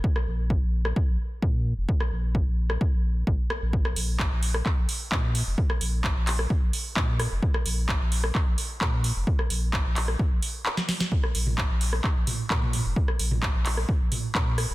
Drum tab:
HH |----------------|----------------|--o---o---o---o-|--o---o---o---o-|
CP |----------------|----------------|----x---x---x---|----x-x-----x---|
SD |-r-----r--------|-r-----r------r-|-r-----r--------|-r-----r------r-|
T2 |----------------|----------------|----------------|----------------|
BD |o---o---o---o---|o---o---o---o---|o---o---o---o---|o---o---o---o---|

HH |--o---o---o---o-|--o---o---o---o-|--o---o---o---o-|--o---o---o---o-|
CP |----x---x---x---|----x-x-----x---|----x---x---x---|----x-x-----x---|
SD |-r-----r--------|-r-----r-----ooo|-r-----r--------|-r-----r------r-|
T2 |----------------|----------------|---o------o--oo-|---o------o-----|
BD |o---o---o---o---|o---o---o-------|o---o---o---o---|o---o---o---o---|